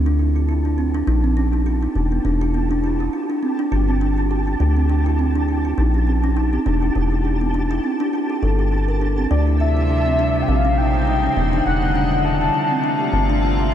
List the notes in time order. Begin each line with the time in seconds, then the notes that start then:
Already playing: D2 G4 A5
0.06 D4
0.19 E4
0.36 F4
0.49 E4
0.65 D4
0.78 C4
0.94 D4
1.07 A#1 D#4
1.24 C4
1.37 C#4
1.53 D#4
1.66 F4
1.83 D#4
1.95 E1 D4
2.12 B3
2.25 E1 D4
2.41 E4
2.54 B3
2.71 D4
2.84 E4
3.00 F#4
3.13 F4
3.30 D4
3.43 C4
3.59 D4
3.72 G1 F4
3.88 C4
4.01 D4
4.18 F4
4.31 G4
4.47 F4
4.60 D2 D4
4.77 C4
4.89 D4
5.06 E4
5.19 C4
5.35 D4
5.48 E4
5.65 F4
5.78 A#1 D#4
5.94 C#4
6.07 C4
6.24 C#4
6.36 D#4
6.53 C4
6.66 E1 D4
6.82 E4
6.95 E1 F#4
7.12 E4
7.25 D4
7.41 B3
7.54 D4
7.71 E4
7.84 C4
8.00 D4
8.13 F4
8.30 G4
8.43 G1 A4
8.59 G4
8.72 D4
8.88 A#4
9.01 D4
9.18 C4
9.31 D2 C3 F3 G3 D4 D5 E5
9.47 E4
9.60 F4 E5
9.77 E4
9.90 D4
10.06 C4
10.19 D4
10.35 F4
10.42 G5
10.48 A#1 C#3 G#3 C4 D#4 C5 F5
10.65 C#4
10.78 D#4 G5
10.94 F4
11.07 D#4
11.24 C#4
11.37 E1 D3 G3 A3 B3 F#5
11.53 D4
11.66 E1 F#4 F#5
11.83 B3
11.95 D4
12.12 E4
12.25 F#4 A5
12.41 E4
12.54 C3 A3 A#3 D4 F4
12.71 C4
12.84 D4
13.00 G4
13.13 G1 C4
13.30 D4
13.43 F4
13.59 G4